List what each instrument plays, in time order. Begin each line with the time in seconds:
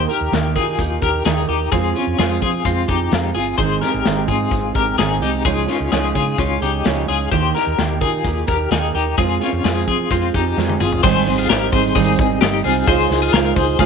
0.08 steel-string acoustic guitar D#4 G4 A#4, closed hi-hat
0.21 fingered electric bass D#2
0.32 fingered electric bass D#2, steel-string acoustic guitar D#3 A#3 D#4 G4 A#4, snare, closed hi-hat
0.55 fingered electric bass D#3, steel-string acoustic guitar D#4 G4 A#4, clean electric guitar F4 G#4, kick, closed hi-hat
0.78 fingered electric bass D#2, steel-string acoustic guitar A#3 D#4 G4 A#4, kick, closed hi-hat
1.01 fingered electric bass D#2, steel-string acoustic guitar D#4 G4 A#4, kick, closed hi-hat
1.25 fingered electric bass D#2, steel-string acoustic guitar D#3 A#3 D#4 G4 A#4, clean electric guitar G#4, snare, closed hi-hat
1.48 fingered electric bass D#2, steel-string acoustic guitar D#4 G4 A#4, closed hi-hat
1.72 fingered electric bass F2, steel-string acoustic guitar F3 G#3 C4 F4 G#4, kick, closed hi-hat
1.95 steel-string acoustic guitar C4 F4 G#4, clean electric guitar C#4, closed hi-hat
2.07 fingered electric bass F2
2.18 fingered electric bass F2, steel-string acoustic guitar F3 G#3 C4 F4 G#4, snare, closed hi-hat
2.42 fingered electric bass F3, steel-string acoustic guitar C4 F4 G#4, kick, closed hi-hat
2.64 fingered electric bass F2, steel-string acoustic guitar G#3 C4 F4 G#4, kick, closed hi-hat
2.88 fingered electric bass F2, steel-string acoustic guitar C4 F4 G#4, clean electric guitar D#4 G4, kick, closed hi-hat
3.11 fingered electric bass F2, steel-string acoustic guitar F3 G#3 C4 F4 G#4, snare, closed hi-hat
3.34 fingered electric bass G1, steel-string acoustic guitar C4 F4 G#4, closed hi-hat
3.58 fingered electric bass G#1, steel-string acoustic guitar G#2 D#3 G#3 C4 D#4 G#4, clean electric guitar C5, kick, closed hi-hat
3.81 steel-string acoustic guitar G#3 C4 D#4 G#4, clean electric guitar G4 A#4, snare, closed hi-hat
3.94 fingered electric bass G#1
4.05 fingered electric bass G#1, steel-string acoustic guitar G#2 D#3 G#3 C4 D#4 G#4, snare, closed hi-hat
4.28 fingered electric bass G#2, steel-string acoustic guitar G#3 C4 D#4 G#4, clean electric guitar F4, kick, closed hi-hat
4.51 fingered electric bass G#1, steel-string acoustic guitar G#3 C4 D#4 G#4, kick, closed hi-hat
4.75 fingered electric bass G#1, steel-string acoustic guitar G#3 C4 D#4 G#4, clean electric guitar G4 A#4, kick, closed hi-hat
4.98 fingered electric bass G#1, steel-string acoustic guitar G#2 D#3 G#3 C4 D#4 G#4, snare, closed hi-hat
5.21 fingered electric bass C2, steel-string acoustic guitar G#3 C4 D#4 G#4, clean electric guitar G4, closed hi-hat
5.45 fingered electric bass C#2, steel-string acoustic guitar C#3 F3 G#3 C#4 D#4 G#4, clean electric guitar F4, kick, closed hi-hat
5.67 steel-string acoustic guitar G#3 C#4 D#4 G#4, clean electric guitar F4, snare, closed hi-hat
5.80 fingered electric bass C#2
5.91 fingered electric bass C#2, steel-string acoustic guitar C#3 F3 G#3 C#4 D#4 G#4, clean electric guitar F4, snare, closed hi-hat
6.14 fingered electric bass C#3, steel-string acoustic guitar G#3 C#4 D#4 G#4, clean electric guitar F4, kick, closed hi-hat
6.38 fingered electric bass C#2, steel-string acoustic guitar G#3 C#4 D#4 G#4, clean electric guitar F4, kick, closed hi-hat
6.61 fingered electric bass C#2, steel-string acoustic guitar G#3 C#4 D#4 G#4, clean electric guitar G4, closed hi-hat
6.84 fingered electric bass C#2, steel-string acoustic guitar C#3 F3 G#3 C#4 D#4 G#4, snare, closed hi-hat
7.07 fingered electric bass C#2, steel-string acoustic guitar G#3 C#4 D#4 G#4, clean electric guitar F4, closed hi-hat
7.31 fingered electric bass D#2, steel-string acoustic guitar D#3 A#3 D#4 G4 A#4, clean electric guitar C5, kick, closed hi-hat
7.54 steel-string acoustic guitar D#4 G4 A#4, snare, closed hi-hat
7.67 fingered electric bass D#2
7.78 fingered electric bass D#2, steel-string acoustic guitar D#3 A#3 D#4 G4 A#4, snare, closed hi-hat
8.01 fingered electric bass D#3, steel-string acoustic guitar D#4 G4 A#4, clean electric guitar F4 G#4, kick, closed hi-hat
8.24 fingered electric bass D#2, steel-string acoustic guitar A#3 D#4 G4 A#4, kick, closed hi-hat
8.47 fingered electric bass D#2, steel-string acoustic guitar D#4 G4 A#4, kick, closed hi-hat
8.70 fingered electric bass D#2, steel-string acoustic guitar D#3 A#3 D#4 G4 A#4, clean electric guitar G#4, snare, closed hi-hat
8.94 fingered electric bass D#2, steel-string acoustic guitar D#4 G4 A#4, closed hi-hat
9.17 fingered electric bass F2, steel-string acoustic guitar F3 G#3 C4 F4 G#4, kick, closed hi-hat
9.40 steel-string acoustic guitar C4 F4 G#4, clean electric guitar C#4, snare, closed hi-hat
9.53 fingered electric bass F2
9.63 fingered electric bass F2, steel-string acoustic guitar F3 G#3 C4 F4 G#4, snare, closed hi-hat
9.87 fingered electric bass F3, steel-string acoustic guitar C4 F4 G#4, kick, closed hi-hat
10.10 fingered electric bass F2, steel-string acoustic guitar G#3 C4 F4 G#4, kick, closed hi-hat
10.34 fingered electric bass F2, steel-string acoustic guitar C4 F4 G#4, clean electric guitar D#4 G4, kick, closed hi-hat
10.57 fingered electric bass F2, steel-string acoustic guitar F3 G#3 C4 F4 G#4, snare
10.69 high tom
10.80 fingered electric bass G1, steel-string acoustic guitar C4 F4 G#4, mid tom
10.92 floor tom
11.03 fingered electric bass G#1, steel-string acoustic guitar G#2 D#3 G3 C4 D#4 C5, clean electric guitar G#4, kick, crash
11.26 fingered electric bass G#1, steel-string acoustic guitar G3 C4 D#4 C5, hi-hat pedal, open hi-hat
11.38 clean electric guitar F4 G#4
11.48 fingered electric bass G#1, steel-string acoustic guitar G3 C4 D#4 C5, clean electric guitar G4 A#4, snare, hi-hat pedal, open hi-hat
11.72 fingered electric bass G#1, steel-string acoustic guitar G3 C4 D#4 C5, clean electric guitar G#4, kick, hi-hat pedal, open hi-hat
11.95 fingered electric bass G#1, steel-string acoustic guitar G#2 D#3 G3 C4 D#4 C5, clean electric guitar G#4, kick, hi-hat pedal, open hi-hat
12.18 fingered electric bass G#1, steel-string acoustic guitar G3 C4 D#4 C5, kick, hi-hat pedal, open hi-hat
12.41 fingered electric bass G1, steel-string acoustic guitar G3 C4 D#4, clean electric guitar G4, snare, hi-hat pedal, open hi-hat
12.45 steel-string acoustic guitar C5
12.64 fingered electric bass C2, steel-string acoustic guitar G3 C4 D#4 C5, clean electric guitar F4 G#4, hi-hat pedal, open hi-hat
12.87 fingered electric bass C#2, steel-string acoustic guitar C#3 G#3 D#4 F4 C5, clean electric guitar G#4, kick, hi-hat pedal, open hi-hat
13.10 fingered electric bass C#2, steel-string acoustic guitar D#4 F4 C5, snare, hi-hat pedal, open hi-hat
13.22 clean electric guitar F4 G#4
13.33 fingered electric bass C#2, steel-string acoustic guitar G#3 D#4 F4 C5, clean electric guitar A#4, snare, hi-hat pedal, open hi-hat
13.56 fingered electric bass C#2, steel-string acoustic guitar D#4 F4 C5, clean electric guitar G#4, kick, hi-hat pedal, open hi-hat
13.79 fingered electric bass C#2, steel-string acoustic guitar C#3 G#3 D#4 F4 C5, clean electric guitar G#4, kick, hi-hat pedal, open hi-hat